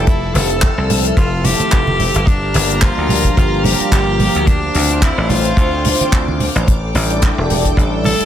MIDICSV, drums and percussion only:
0, 0, Header, 1, 2, 480
1, 0, Start_track
1, 0, Key_signature, -1, "minor"
1, 0, Tempo, 550459
1, 61, Time_signature, 4, 2, 24, 8
1, 7195, End_track
2, 0, Start_track
2, 0, Title_t, "Drums"
2, 60, Note_on_c, 9, 42, 61
2, 63, Note_on_c, 9, 36, 127
2, 147, Note_off_c, 9, 42, 0
2, 150, Note_off_c, 9, 36, 0
2, 301, Note_on_c, 9, 63, 65
2, 304, Note_on_c, 9, 46, 106
2, 388, Note_off_c, 9, 63, 0
2, 392, Note_off_c, 9, 46, 0
2, 437, Note_on_c, 9, 42, 73
2, 524, Note_off_c, 9, 42, 0
2, 540, Note_on_c, 9, 39, 112
2, 541, Note_on_c, 9, 42, 64
2, 547, Note_on_c, 9, 36, 122
2, 627, Note_off_c, 9, 39, 0
2, 628, Note_off_c, 9, 42, 0
2, 635, Note_off_c, 9, 36, 0
2, 782, Note_on_c, 9, 46, 113
2, 786, Note_on_c, 9, 64, 95
2, 869, Note_off_c, 9, 46, 0
2, 873, Note_off_c, 9, 64, 0
2, 914, Note_on_c, 9, 42, 75
2, 1001, Note_off_c, 9, 42, 0
2, 1019, Note_on_c, 9, 36, 122
2, 1021, Note_on_c, 9, 42, 58
2, 1107, Note_off_c, 9, 36, 0
2, 1108, Note_off_c, 9, 42, 0
2, 1258, Note_on_c, 9, 64, 91
2, 1260, Note_on_c, 9, 46, 117
2, 1345, Note_off_c, 9, 64, 0
2, 1347, Note_off_c, 9, 46, 0
2, 1392, Note_on_c, 9, 63, 71
2, 1395, Note_on_c, 9, 42, 77
2, 1479, Note_off_c, 9, 63, 0
2, 1482, Note_off_c, 9, 42, 0
2, 1497, Note_on_c, 9, 42, 57
2, 1500, Note_on_c, 9, 39, 111
2, 1506, Note_on_c, 9, 36, 110
2, 1584, Note_off_c, 9, 42, 0
2, 1587, Note_off_c, 9, 39, 0
2, 1594, Note_off_c, 9, 36, 0
2, 1634, Note_on_c, 9, 63, 85
2, 1721, Note_off_c, 9, 63, 0
2, 1740, Note_on_c, 9, 46, 96
2, 1741, Note_on_c, 9, 64, 81
2, 1827, Note_off_c, 9, 46, 0
2, 1828, Note_off_c, 9, 64, 0
2, 1868, Note_on_c, 9, 42, 64
2, 1955, Note_off_c, 9, 42, 0
2, 1979, Note_on_c, 9, 36, 120
2, 1984, Note_on_c, 9, 42, 70
2, 2066, Note_off_c, 9, 36, 0
2, 2071, Note_off_c, 9, 42, 0
2, 2215, Note_on_c, 9, 46, 114
2, 2222, Note_on_c, 9, 63, 69
2, 2303, Note_off_c, 9, 46, 0
2, 2309, Note_off_c, 9, 63, 0
2, 2352, Note_on_c, 9, 42, 65
2, 2439, Note_off_c, 9, 42, 0
2, 2456, Note_on_c, 9, 39, 103
2, 2457, Note_on_c, 9, 42, 68
2, 2461, Note_on_c, 9, 36, 115
2, 2543, Note_off_c, 9, 39, 0
2, 2544, Note_off_c, 9, 42, 0
2, 2548, Note_off_c, 9, 36, 0
2, 2695, Note_on_c, 9, 64, 91
2, 2703, Note_on_c, 9, 46, 102
2, 2782, Note_off_c, 9, 64, 0
2, 2790, Note_off_c, 9, 46, 0
2, 2828, Note_on_c, 9, 42, 73
2, 2829, Note_on_c, 9, 36, 60
2, 2915, Note_off_c, 9, 42, 0
2, 2916, Note_off_c, 9, 36, 0
2, 2941, Note_on_c, 9, 36, 120
2, 2941, Note_on_c, 9, 42, 62
2, 3028, Note_off_c, 9, 36, 0
2, 3029, Note_off_c, 9, 42, 0
2, 3178, Note_on_c, 9, 64, 84
2, 3184, Note_on_c, 9, 46, 110
2, 3187, Note_on_c, 9, 63, 67
2, 3265, Note_off_c, 9, 64, 0
2, 3271, Note_off_c, 9, 46, 0
2, 3274, Note_off_c, 9, 63, 0
2, 3314, Note_on_c, 9, 42, 81
2, 3401, Note_off_c, 9, 42, 0
2, 3416, Note_on_c, 9, 36, 111
2, 3424, Note_on_c, 9, 42, 56
2, 3425, Note_on_c, 9, 39, 119
2, 3504, Note_off_c, 9, 36, 0
2, 3512, Note_off_c, 9, 39, 0
2, 3512, Note_off_c, 9, 42, 0
2, 3658, Note_on_c, 9, 64, 82
2, 3659, Note_on_c, 9, 46, 99
2, 3745, Note_off_c, 9, 64, 0
2, 3746, Note_off_c, 9, 46, 0
2, 3791, Note_on_c, 9, 42, 67
2, 3878, Note_off_c, 9, 42, 0
2, 3899, Note_on_c, 9, 42, 63
2, 3900, Note_on_c, 9, 36, 114
2, 3986, Note_off_c, 9, 42, 0
2, 3987, Note_off_c, 9, 36, 0
2, 4137, Note_on_c, 9, 46, 108
2, 4142, Note_on_c, 9, 63, 61
2, 4224, Note_off_c, 9, 46, 0
2, 4230, Note_off_c, 9, 63, 0
2, 4274, Note_on_c, 9, 42, 75
2, 4361, Note_off_c, 9, 42, 0
2, 4377, Note_on_c, 9, 36, 118
2, 4383, Note_on_c, 9, 39, 108
2, 4387, Note_on_c, 9, 42, 63
2, 4464, Note_off_c, 9, 36, 0
2, 4470, Note_off_c, 9, 39, 0
2, 4474, Note_off_c, 9, 42, 0
2, 4618, Note_on_c, 9, 64, 93
2, 4619, Note_on_c, 9, 46, 92
2, 4705, Note_off_c, 9, 64, 0
2, 4707, Note_off_c, 9, 46, 0
2, 4753, Note_on_c, 9, 42, 69
2, 4840, Note_off_c, 9, 42, 0
2, 4856, Note_on_c, 9, 36, 127
2, 4864, Note_on_c, 9, 42, 59
2, 4944, Note_off_c, 9, 36, 0
2, 4951, Note_off_c, 9, 42, 0
2, 5097, Note_on_c, 9, 46, 108
2, 5105, Note_on_c, 9, 64, 80
2, 5184, Note_off_c, 9, 46, 0
2, 5193, Note_off_c, 9, 64, 0
2, 5237, Note_on_c, 9, 42, 78
2, 5239, Note_on_c, 9, 63, 66
2, 5324, Note_off_c, 9, 42, 0
2, 5326, Note_off_c, 9, 63, 0
2, 5340, Note_on_c, 9, 36, 112
2, 5343, Note_on_c, 9, 42, 68
2, 5345, Note_on_c, 9, 39, 102
2, 5428, Note_off_c, 9, 36, 0
2, 5430, Note_off_c, 9, 42, 0
2, 5432, Note_off_c, 9, 39, 0
2, 5476, Note_on_c, 9, 63, 81
2, 5563, Note_off_c, 9, 63, 0
2, 5580, Note_on_c, 9, 64, 71
2, 5583, Note_on_c, 9, 46, 95
2, 5667, Note_off_c, 9, 64, 0
2, 5670, Note_off_c, 9, 46, 0
2, 5717, Note_on_c, 9, 42, 68
2, 5805, Note_off_c, 9, 42, 0
2, 5823, Note_on_c, 9, 36, 106
2, 5824, Note_on_c, 9, 42, 68
2, 5910, Note_off_c, 9, 36, 0
2, 5911, Note_off_c, 9, 42, 0
2, 6057, Note_on_c, 9, 46, 97
2, 6058, Note_on_c, 9, 63, 57
2, 6145, Note_off_c, 9, 46, 0
2, 6145, Note_off_c, 9, 63, 0
2, 6193, Note_on_c, 9, 42, 72
2, 6280, Note_off_c, 9, 42, 0
2, 6293, Note_on_c, 9, 42, 59
2, 6301, Note_on_c, 9, 36, 115
2, 6307, Note_on_c, 9, 39, 104
2, 6381, Note_off_c, 9, 42, 0
2, 6389, Note_off_c, 9, 36, 0
2, 6394, Note_off_c, 9, 39, 0
2, 6539, Note_on_c, 9, 46, 101
2, 6550, Note_on_c, 9, 64, 83
2, 6626, Note_off_c, 9, 46, 0
2, 6637, Note_off_c, 9, 64, 0
2, 6671, Note_on_c, 9, 36, 54
2, 6671, Note_on_c, 9, 42, 83
2, 6758, Note_off_c, 9, 36, 0
2, 6759, Note_off_c, 9, 42, 0
2, 6777, Note_on_c, 9, 36, 112
2, 6789, Note_on_c, 9, 42, 70
2, 6864, Note_off_c, 9, 36, 0
2, 6876, Note_off_c, 9, 42, 0
2, 7015, Note_on_c, 9, 64, 77
2, 7019, Note_on_c, 9, 63, 62
2, 7027, Note_on_c, 9, 46, 100
2, 7102, Note_off_c, 9, 64, 0
2, 7106, Note_off_c, 9, 63, 0
2, 7114, Note_off_c, 9, 46, 0
2, 7153, Note_on_c, 9, 42, 79
2, 7195, Note_off_c, 9, 42, 0
2, 7195, End_track
0, 0, End_of_file